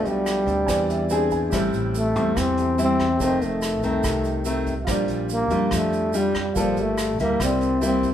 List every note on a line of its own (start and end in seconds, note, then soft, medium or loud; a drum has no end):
0.00 0.66 B2 medium
0.00 0.43 F3 medium
0.00 0.44 A3 medium
0.00 0.44 D4 medium
0.00 0.65 F4 soft
0.00 0.66 A4 soft
0.00 0.67 B4 soft
0.00 0.68 D5 medium
0.05 0.48 B1 medium
0.05 1.32 G3 medium
0.05 closed hi-hat soft
0.05 shaker soft
0.26 cross-stick medium
0.26 closed hi-hat soft
0.26 shaker medium
0.46 0.67 D2 medium
0.46 1.07 C4 medium
0.46 1.07 D4 medium
0.46 kick soft
0.46 closed hi-hat soft
0.46 shaker soft
0.66 1.49 E2 loud
0.66 1.50 E3 medium
0.66 1.51 C5 medium
0.66 1.52 D5 medium
0.66 1.30 G#5 medium
0.66 kick medium
0.66 cross-stick medium
0.66 closed hi-hat medium
0.66 shaker medium
0.89 1.09 E5 medium
0.89 closed hi-hat soft
0.89 shaker soft
1.10 1.49 C4 medium
1.10 1.50 D4 medium
1.10 1.50 G#4 medium
1.10 1.30 G5 medium
1.10 closed hi-hat soft
1.10 shaker medium
1.31 1.51 G#5 medium
1.31 kick soft
1.31 closed hi-hat soft
1.31 shaker soft
1.50 1.72 A1 loud
1.50 2.34 A2 medium
1.50 2.12 G3 medium
1.50 2.12 C4 soft
1.50 2.12 E4 medium
1.50 2.54 G4 medium
1.50 2.55 A4 medium
1.50 2.56 C5 medium
1.50 kick medium
1.50 cross-stick medium
1.50 closed hi-hat medium
1.50 shaker medium
1.56 2.57 E5 medium
1.73 2.16 A1 medium
1.73 closed hi-hat soft
1.73 shaker soft
1.94 2.41 A3 loud
1.94 closed hi-hat soft
1.94 shaker medium
2.16 2.35 E2 loud
2.16 2.75 G3 medium
2.16 2.75 C4 medium
2.16 2.76 E4 medium
2.16 kick soft
2.16 closed hi-hat soft
2.16 shaker soft
2.37 3.17 E2 loud
2.37 3.19 E3 medium
2.37 2.80 C4 loud
2.37 kick medium
2.37 cross-stick medium
2.37 closed hi-hat medium
2.37 shaker medium
2.56 3.16 G4 soft
2.56 3.18 A4 soft
2.56 3.20 C5 soft
2.56 3.21 E5 soft
2.56 closed hi-hat soft
2.56 shaker soft
2.78 3.05 G3 medium
2.78 3.05 C4 medium
2.78 3.06 E4 medium
2.78 closed hi-hat soft
2.78 shaker medium
2.82 3.19 C4 loud
2.99 kick soft
2.99 cross-stick medium
2.99 closed hi-hat soft
2.99 shaker soft
3.17 3.40 F1 loud
3.17 4.03 F2 medium
3.17 3.80 D#3 medium
3.17 4.83 G4 soft
3.17 4.84 A4 soft
3.17 4.85 C5 soft
3.17 kick medium
3.17 closed hi-hat medium
3.17 shaker medium
3.21 3.80 A3 medium
3.21 3.80 C4 medium
3.21 3.46 C4 medium
3.21 4.86 D#5 medium
3.41 3.83 F1 medium
3.41 4.69 A3 medium
3.41 closed hi-hat soft
3.41 shaker soft
3.62 cross-stick medium
3.62 closed hi-hat soft
3.62 shaker medium
3.83 4.03 C2 medium
3.83 4.43 D#3 medium
3.83 4.43 A3 medium
3.83 4.43 C4 medium
3.83 kick soft
3.83 closed hi-hat soft
3.83 shaker soft
4.03 4.84 C2 loud
4.03 4.86 C3 medium
4.03 kick medium
4.03 cross-stick medium
4.03 closed hi-hat medium
4.03 shaker medium
4.24 closed hi-hat soft
4.24 shaker soft
4.45 4.73 D#3 medium
4.45 4.73 A3 medium
4.45 4.73 C4 medium
4.45 closed hi-hat soft
4.45 shaker medium
4.66 kick soft
4.66 closed hi-hat soft
4.66 shaker soft
4.84 5.07 A#1 loud
4.84 5.70 A#2 medium
4.84 5.47 G3 soft
4.84 5.48 D4 medium
4.84 6.51 F4 medium
4.84 5.48 F4 medium
4.84 6.52 G4 medium
4.84 kick medium
4.84 cross-stick medium
4.84 closed hi-hat medium
4.84 shaker medium
4.89 6.53 C5 medium
4.89 6.54 D5 medium
5.08 5.51 A#1 medium
5.08 closed hi-hat soft
5.08 shaker soft
5.29 5.77 A#3 loud
5.29 closed hi-hat soft
5.29 shaker medium
5.50 5.71 F2 loud
5.50 6.10 G3 medium
5.50 6.10 D4 medium
5.50 6.11 F4 medium
5.50 kick soft
5.50 closed hi-hat soft
5.50 shaker soft
5.71 6.52 F2 loud
5.71 6.54 F3 medium
5.71 kick medium
5.71 cross-stick medium
5.71 closed hi-hat medium
5.71 shaker medium
5.76 6.19 A3 medium
5.93 closed hi-hat soft
5.93 shaker soft
6.13 6.41 G3 medium
6.13 6.41 D4 medium
6.13 6.41 F4 medium
6.13 closed hi-hat soft
6.13 shaker medium
6.18 6.37 G3 medium
6.35 kick soft
6.35 cross-stick medium
6.35 closed hi-hat soft
6.35 shaker soft
6.39 6.62 G3 medium
6.54 6.75 G1 loud
6.54 7.19 G3 medium
6.54 6.98 A#3 soft
6.54 7.37 F4 medium
6.54 6.98 F4 medium
6.54 7.38 A4 soft
6.54 6.98 A4 medium
6.54 kick medium
6.54 closed hi-hat medium
6.54 shaker medium
6.59 6.82 F3 medium
6.59 7.40 D5 medium
6.77 7.19 G1 medium
6.77 closed hi-hat soft
6.77 shaker soft
6.81 7.21 A3 loud
6.98 cross-stick medium
6.98 closed hi-hat soft
6.98 shaker medium
7.19 7.39 D2 loud
7.19 7.79 G3 medium
7.19 7.79 A#3 medium
7.19 7.45 A#3 medium
7.19 7.79 E4 medium
7.19 kick soft
7.19 closed hi-hat soft
7.19 shaker soft
7.38 8.14 C2 loud
7.38 8.14 C3 medium
7.38 8.14 E4 medium
7.38 8.14 G4 soft
7.38 8.14 A#4 soft
7.38 kick medium
7.38 cross-stick medium
7.38 closed hi-hat medium
7.38 shaker medium
7.43 7.83 C4 loud
7.43 8.14 D5 medium
7.61 closed hi-hat soft
7.61 shaker soft
7.81 8.09 G3 medium
7.81 8.09 A#3 medium
7.81 8.09 E4 medium
7.81 closed hi-hat soft
7.81 shaker medium
7.86 8.13 C4 medium
8.03 kick soft
8.03 closed hi-hat soft
8.03 shaker soft